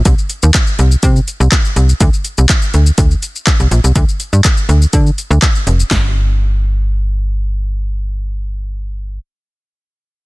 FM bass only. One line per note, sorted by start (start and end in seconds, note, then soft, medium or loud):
0.05 0.15 C2 loud
0.43 0.51 D#2 medium
0.79 0.96 C2 medium
1.03 1.20 C3 loud
1.40 1.48 C2 medium
1.76 1.94 C2 medium
2.01 2.10 D2 loud
2.38 2.46 C2 medium
2.74 2.91 D2 medium
2.98 3.15 D2 loud
3.60 3.68 C2 medium
3.71 3.80 A#1 medium
3.84 3.92 C2 medium
3.96 4.05 D2 loud
4.33 4.41 G2 medium
4.69 4.86 D2 medium
4.93 5.11 D3 loud
5.31 5.39 D2 loud
5.67 5.84 F1 medium
5.91 9.19 G1 loud